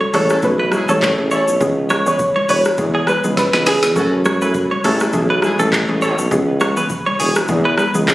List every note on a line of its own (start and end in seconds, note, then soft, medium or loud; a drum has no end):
0.01 0.10 C#5 medium
0.01 high conga medium
0.13 0.37 A1 loud
0.13 0.41 E3 loud
0.13 0.41 A3 medium
0.13 0.27 C#4 medium
0.13 0.41 C#4 medium
0.13 0.27 E4 medium
0.13 0.41 G#4 loud
0.13 0.27 A4 medium
0.13 0.26 A4 medium
0.13 0.28 C#5 medium
0.13 cross-stick medium
0.13 open hi-hat medium
0.13 high conga medium
0.13 low conga medium
0.13 shaker medium
0.30 0.40 C#4 medium
0.30 0.40 E4 medium
0.30 0.40 A4 loud
0.30 cross-stick loud
0.30 shaker medium
0.42 0.79 B1 loud
0.42 0.60 E3 medium
0.42 0.61 A3 medium
0.42 0.61 C#4 medium
0.42 0.61 G#4 loud
0.42 0.58 B4 medium
0.42 kick loud
0.42 shaker medium
0.59 0.69 B4 medium
0.72 0.85 C#4 medium
0.72 0.85 E4 medium
0.72 0.85 G#4 loud
0.72 cross-stick loud
0.72 high conga medium
0.72 shaker medium
0.88 1.12 A1 loud
0.88 1.03 E3 medium
0.88 1.04 A3 medium
0.88 1.04 C#4 medium
0.88 1.04 G#4 medium
0.88 0.98 A4 medium
0.88 1.01 C#5 medium
0.88 high conga medium
0.88 shaker medium
1.02 kick loud
1.02 cross-stick medium
1.02 clap medium
1.02 shaker medium
1.18 1.41 A1 medium
1.18 1.33 E3 medium
1.18 1.33 A3 medium
1.18 1.33 C#4 medium
1.18 1.33 G#4 medium
1.18 high conga medium
1.31 1.41 C#4 medium
1.31 1.41 E4 medium
1.31 1.41 A4 medium
1.31 1.43 C#5 medium
1.31 1.46 C#5 medium
1.31 shaker medium
1.47 1.58 B1 loud
1.47 shaker medium
1.60 2.06 C#2 loud
1.60 1.78 E3 medium
1.60 1.78 B3 medium
1.60 1.78 C#4 medium
1.60 1.78 G#4 loud
1.60 kick loud
1.60 low conga medium
1.60 shaker medium
1.90 2.06 C#5 medium
1.90 cross-stick loud
1.90 high conga medium
1.90 shaker medium
2.06 2.21 E3 medium
2.06 2.21 B3 medium
2.06 2.21 C#4 medium
2.06 2.21 G#4 medium
2.06 2.16 B4 medium
2.06 2.18 C#5 medium
2.06 shaker medium
2.19 kick medium
2.19 shaker medium
2.36 2.45 C#5 medium
2.36 high conga medium
2.49 2.72 E1 loud
2.49 2.61 B4 medium
2.49 2.63 C#5 medium
2.49 open hi-hat medium
2.49 high conga medium
2.49 low conga medium
2.49 shaker medium
2.65 cross-stick loud
2.65 shaker medium
2.78 3.14 E2 loud
2.78 2.96 E3 medium
2.78 2.96 G#3 medium
2.78 2.96 B3 medium
2.78 2.96 G#4 loud
2.78 kick loud
2.78 shaker medium
2.95 3.04 G#4 medium
3.07 3.20 B4 medium
3.07 3.22 B4 medium
3.07 cross-stick loud
3.07 high conga medium
3.07 shaker medium
3.24 3.47 C#2 medium
3.24 3.39 E3 medium
3.24 3.39 G#3 medium
3.24 3.39 B3 medium
3.24 3.39 G#4 medium
3.24 high conga medium
3.24 shaker medium
3.37 3.52 B4 medium
3.37 kick loud
3.37 snare medium
3.37 shaker medium
3.53 3.77 C#2 medium
3.53 3.68 E3 medium
3.53 3.68 G#3 medium
3.53 3.68 B3 medium
3.53 3.68 G#4 medium
3.53 3.63 B4 medium
3.53 snare medium
3.53 high conga medium
3.66 3.79 G#4 medium
3.66 3.81 G#4 medium
3.66 snare loud
3.66 open hi-hat medium
3.66 shaker medium
3.83 3.97 E2 medium
3.83 snare medium
3.83 shaker medium
3.96 4.67 F#2 loud
3.96 4.13 F#3 loud
3.96 4.13 A3 medium
3.96 4.09 C#4 loud
3.96 4.14 C#4 medium
3.96 4.09 F#4 loud
3.96 4.09 A4 loud
3.96 4.14 A4 loud
3.96 kick loud
3.96 low conga medium
3.96 shaker medium
4.25 4.37 C#5 medium
4.25 cross-stick loud
4.25 high conga medium
4.25 shaker medium
4.41 4.56 F#3 medium
4.41 4.56 A3 medium
4.41 4.57 C#4 medium
4.41 4.52 E4 medium
4.41 4.52 G#4 medium
4.41 4.57 A4 medium
4.41 4.52 B4 medium
4.41 4.51 B4 medium
4.41 shaker medium
4.54 kick medium
4.54 shaker medium
4.71 4.81 C#5 medium
4.71 high conga medium
4.84 5.08 A1 loud
4.84 5.11 E3 loud
4.84 5.12 A3 medium
4.84 4.97 C#4 medium
4.84 5.12 C#4 medium
4.84 4.97 E4 medium
4.84 5.12 G#4 loud
4.84 4.97 A4 loud
4.84 4.96 A4 medium
4.84 cross-stick medium
4.84 open hi-hat medium
4.84 high conga medium
4.84 low conga medium
4.84 shaker medium
5.00 5.11 C#4 medium
5.00 5.11 E4 medium
5.00 5.11 A4 medium
5.00 cross-stick loud
5.00 shaker medium
5.13 5.50 B1 loud
5.13 5.31 E3 loud
5.13 5.31 A3 medium
5.13 5.31 C#4 medium
5.13 5.31 G#4 loud
5.13 kick loud
5.13 shaker medium
5.30 5.40 B4 medium
5.42 5.56 C#4 medium
5.42 5.56 E4 medium
5.42 5.56 G#4 loud
5.42 cross-stick loud
5.42 high conga medium
5.42 shaker medium
5.59 5.83 A1 loud
5.59 5.74 E3 medium
5.59 5.74 A3 medium
5.59 5.74 C#4 medium
5.59 5.74 G#4 medium
5.59 5.69 A4 medium
5.59 high conga medium
5.59 shaker medium
5.73 kick loud
5.73 cross-stick loud
5.73 clap loud
5.73 shaker medium
5.88 6.12 A1 loud
5.88 6.03 E3 medium
5.88 6.04 A3 medium
5.88 6.04 C#4 medium
5.88 6.04 G#4 medium
5.88 high conga medium
6.02 6.15 C#4 medium
6.02 6.15 E4 medium
6.02 6.15 A4 loud
6.02 6.14 C#5 medium
6.02 shaker medium
6.18 6.29 B1 loud
6.18 shaker medium
6.31 6.77 C#2 loud
6.31 6.49 E3 medium
6.31 6.49 B3 medium
6.31 6.49 C#4 medium
6.31 6.49 G#4 loud
6.31 kick loud
6.31 low conga medium
6.31 shaker medium
6.60 6.73 C#5 medium
6.60 cross-stick loud
6.60 high conga medium
6.60 shaker medium
6.77 6.92 E3 medium
6.77 6.92 B3 medium
6.77 6.92 C#4 medium
6.77 6.92 G#4 medium
6.77 6.87 B4 medium
6.77 shaker medium
6.90 kick medium
6.90 shaker medium
7.06 7.16 C#5 medium
7.06 high conga medium
7.20 7.43 E1 loud
7.20 7.31 G#4 medium
7.20 open hi-hat medium
7.20 high conga medium
7.20 low conga medium
7.20 shaker medium
7.36 cross-stick loud
7.36 shaker medium
7.48 7.85 E2 loud
7.48 7.66 E3 loud
7.48 7.66 G#3 medium
7.48 7.67 B3 medium
7.48 7.67 G#4 loud
7.48 kick loud
7.48 shaker medium
7.65 7.75 B4 medium
7.78 7.90 B4 medium
7.78 cross-stick loud
7.78 high conga medium
7.78 shaker medium
7.94 8.14 C#2 medium
7.94 8.09 E3 medium
7.94 8.09 G#3 medium
7.94 8.10 B3 medium
7.94 8.10 G#4 medium
7.94 high conga loud
7.94 shaker medium
8.08 kick loud
8.08 cross-stick loud
8.08 clap loud
8.08 shaker medium